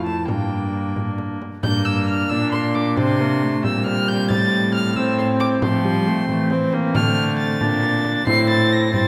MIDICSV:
0, 0, Header, 1, 6, 480
1, 0, Start_track
1, 0, Tempo, 448096
1, 304, Time_signature, 6, 3, 24, 8
1, 3182, Tempo, 441826
1, 9817, End_track
2, 0, Start_track
2, 0, Title_t, "Violin"
2, 0, Program_c, 0, 40
2, 54, Note_on_c, 0, 81, 73
2, 296, Note_off_c, 0, 81, 0
2, 302, Note_on_c, 0, 79, 70
2, 1014, Note_off_c, 0, 79, 0
2, 1749, Note_on_c, 0, 91, 116
2, 1984, Note_on_c, 0, 88, 102
2, 2000, Note_off_c, 0, 91, 0
2, 2227, Note_off_c, 0, 88, 0
2, 2236, Note_on_c, 0, 89, 99
2, 2457, Note_on_c, 0, 88, 110
2, 2473, Note_off_c, 0, 89, 0
2, 2693, Note_off_c, 0, 88, 0
2, 2700, Note_on_c, 0, 84, 88
2, 2944, Note_on_c, 0, 86, 97
2, 2960, Note_off_c, 0, 84, 0
2, 3182, Note_off_c, 0, 86, 0
2, 3193, Note_on_c, 0, 84, 105
2, 3895, Note_off_c, 0, 84, 0
2, 3918, Note_on_c, 0, 88, 99
2, 4143, Note_off_c, 0, 88, 0
2, 4149, Note_on_c, 0, 89, 103
2, 4389, Note_on_c, 0, 91, 106
2, 4405, Note_off_c, 0, 89, 0
2, 4627, Note_off_c, 0, 91, 0
2, 4635, Note_on_c, 0, 93, 116
2, 5100, Note_off_c, 0, 93, 0
2, 5105, Note_on_c, 0, 89, 104
2, 5349, Note_on_c, 0, 88, 93
2, 5365, Note_off_c, 0, 89, 0
2, 5581, Note_off_c, 0, 88, 0
2, 5588, Note_on_c, 0, 84, 93
2, 5675, Note_off_c, 0, 84, 0
2, 5821, Note_on_c, 0, 86, 103
2, 5908, Note_off_c, 0, 86, 0
2, 6065, Note_on_c, 0, 84, 103
2, 7240, Note_off_c, 0, 84, 0
2, 7502, Note_on_c, 0, 89, 115
2, 7947, Note_off_c, 0, 89, 0
2, 7983, Note_on_c, 0, 93, 117
2, 8922, Note_off_c, 0, 93, 0
2, 8943, Note_on_c, 0, 96, 123
2, 9177, Note_off_c, 0, 96, 0
2, 9184, Note_on_c, 0, 93, 117
2, 9433, Note_on_c, 0, 94, 109
2, 9449, Note_off_c, 0, 93, 0
2, 9663, Note_off_c, 0, 94, 0
2, 9669, Note_on_c, 0, 93, 117
2, 9817, Note_off_c, 0, 93, 0
2, 9817, End_track
3, 0, Start_track
3, 0, Title_t, "Recorder"
3, 0, Program_c, 1, 74
3, 0, Note_on_c, 1, 64, 49
3, 310, Note_off_c, 1, 64, 0
3, 326, Note_on_c, 1, 62, 52
3, 1500, Note_off_c, 1, 62, 0
3, 1768, Note_on_c, 1, 62, 77
3, 3905, Note_on_c, 1, 60, 71
3, 3922, Note_off_c, 1, 62, 0
3, 5328, Note_off_c, 1, 60, 0
3, 5335, Note_on_c, 1, 60, 71
3, 8589, Note_off_c, 1, 60, 0
3, 8940, Note_on_c, 1, 64, 80
3, 9618, Note_off_c, 1, 64, 0
3, 9662, Note_on_c, 1, 64, 77
3, 9817, Note_off_c, 1, 64, 0
3, 9817, End_track
4, 0, Start_track
4, 0, Title_t, "Viola"
4, 0, Program_c, 2, 41
4, 0, Note_on_c, 2, 57, 52
4, 294, Note_off_c, 2, 57, 0
4, 309, Note_on_c, 2, 58, 50
4, 1515, Note_off_c, 2, 58, 0
4, 1753, Note_on_c, 2, 58, 69
4, 2473, Note_on_c, 2, 62, 69
4, 2489, Note_off_c, 2, 58, 0
4, 3177, Note_off_c, 2, 62, 0
4, 3184, Note_on_c, 2, 60, 75
4, 3433, Note_on_c, 2, 58, 74
4, 3449, Note_off_c, 2, 60, 0
4, 3677, Note_on_c, 2, 57, 71
4, 3693, Note_off_c, 2, 58, 0
4, 3909, Note_on_c, 2, 55, 73
4, 3926, Note_off_c, 2, 57, 0
4, 5347, Note_off_c, 2, 55, 0
4, 5354, Note_on_c, 2, 60, 73
4, 6054, Note_off_c, 2, 60, 0
4, 6064, Note_on_c, 2, 57, 76
4, 6304, Note_on_c, 2, 55, 80
4, 6321, Note_off_c, 2, 57, 0
4, 6557, Note_on_c, 2, 57, 77
4, 6573, Note_off_c, 2, 55, 0
4, 6790, Note_off_c, 2, 57, 0
4, 6801, Note_on_c, 2, 57, 77
4, 7037, Note_on_c, 2, 60, 78
4, 7053, Note_off_c, 2, 57, 0
4, 7268, Note_on_c, 2, 58, 79
4, 7285, Note_off_c, 2, 60, 0
4, 7515, Note_on_c, 2, 57, 77
4, 7531, Note_off_c, 2, 58, 0
4, 8230, Note_on_c, 2, 62, 79
4, 8246, Note_off_c, 2, 57, 0
4, 8932, Note_off_c, 2, 62, 0
4, 8939, Note_on_c, 2, 60, 76
4, 9646, Note_off_c, 2, 60, 0
4, 9661, Note_on_c, 2, 60, 79
4, 9817, Note_off_c, 2, 60, 0
4, 9817, End_track
5, 0, Start_track
5, 0, Title_t, "Cello"
5, 0, Program_c, 3, 42
5, 0, Note_on_c, 3, 41, 66
5, 311, Note_on_c, 3, 43, 56
5, 327, Note_off_c, 3, 41, 0
5, 1541, Note_off_c, 3, 43, 0
5, 1759, Note_on_c, 3, 43, 81
5, 2429, Note_off_c, 3, 43, 0
5, 2472, Note_on_c, 3, 46, 75
5, 3188, Note_on_c, 3, 48, 82
5, 3204, Note_off_c, 3, 46, 0
5, 3906, Note_on_c, 3, 46, 70
5, 3923, Note_off_c, 3, 48, 0
5, 4631, Note_on_c, 3, 45, 83
5, 4647, Note_off_c, 3, 46, 0
5, 6064, Note_on_c, 3, 53, 82
5, 6081, Note_off_c, 3, 45, 0
5, 6779, Note_off_c, 3, 53, 0
5, 6786, Note_on_c, 3, 52, 76
5, 7506, Note_on_c, 3, 50, 85
5, 7522, Note_off_c, 3, 52, 0
5, 8219, Note_on_c, 3, 46, 78
5, 8236, Note_off_c, 3, 50, 0
5, 8936, Note_off_c, 3, 46, 0
5, 8943, Note_on_c, 3, 45, 88
5, 9665, Note_on_c, 3, 43, 78
5, 9681, Note_off_c, 3, 45, 0
5, 9817, Note_off_c, 3, 43, 0
5, 9817, End_track
6, 0, Start_track
6, 0, Title_t, "Frame drum"
6, 70, Note_on_c, 9, 64, 44
6, 177, Note_off_c, 9, 64, 0
6, 303, Note_on_c, 9, 64, 70
6, 410, Note_off_c, 9, 64, 0
6, 1031, Note_on_c, 9, 64, 45
6, 1138, Note_off_c, 9, 64, 0
6, 1268, Note_on_c, 9, 64, 46
6, 1375, Note_off_c, 9, 64, 0
6, 1517, Note_on_c, 9, 64, 43
6, 1624, Note_off_c, 9, 64, 0
6, 1750, Note_on_c, 9, 64, 79
6, 1857, Note_off_c, 9, 64, 0
6, 2471, Note_on_c, 9, 64, 51
6, 2578, Note_off_c, 9, 64, 0
6, 2713, Note_on_c, 9, 64, 54
6, 2820, Note_off_c, 9, 64, 0
6, 2947, Note_on_c, 9, 64, 48
6, 3054, Note_off_c, 9, 64, 0
6, 3184, Note_on_c, 9, 64, 81
6, 3293, Note_off_c, 9, 64, 0
6, 3912, Note_on_c, 9, 64, 53
6, 4021, Note_off_c, 9, 64, 0
6, 4151, Note_on_c, 9, 64, 53
6, 4259, Note_off_c, 9, 64, 0
6, 4387, Note_on_c, 9, 64, 50
6, 4495, Note_off_c, 9, 64, 0
6, 4630, Note_on_c, 9, 64, 76
6, 4738, Note_off_c, 9, 64, 0
6, 5350, Note_on_c, 9, 64, 51
6, 5459, Note_off_c, 9, 64, 0
6, 5588, Note_on_c, 9, 64, 53
6, 5697, Note_off_c, 9, 64, 0
6, 5826, Note_on_c, 9, 64, 52
6, 5934, Note_off_c, 9, 64, 0
6, 6062, Note_on_c, 9, 64, 81
6, 6171, Note_off_c, 9, 64, 0
6, 6785, Note_on_c, 9, 64, 53
6, 6893, Note_off_c, 9, 64, 0
6, 7018, Note_on_c, 9, 64, 56
6, 7126, Note_off_c, 9, 64, 0
6, 7261, Note_on_c, 9, 64, 49
6, 7370, Note_off_c, 9, 64, 0
6, 7503, Note_on_c, 9, 64, 81
6, 7611, Note_off_c, 9, 64, 0
6, 8221, Note_on_c, 9, 64, 55
6, 8330, Note_off_c, 9, 64, 0
6, 8459, Note_on_c, 9, 64, 53
6, 8567, Note_off_c, 9, 64, 0
6, 8693, Note_on_c, 9, 64, 52
6, 8802, Note_off_c, 9, 64, 0
6, 8937, Note_on_c, 9, 64, 80
6, 9046, Note_off_c, 9, 64, 0
6, 9663, Note_on_c, 9, 64, 54
6, 9772, Note_off_c, 9, 64, 0
6, 9817, End_track
0, 0, End_of_file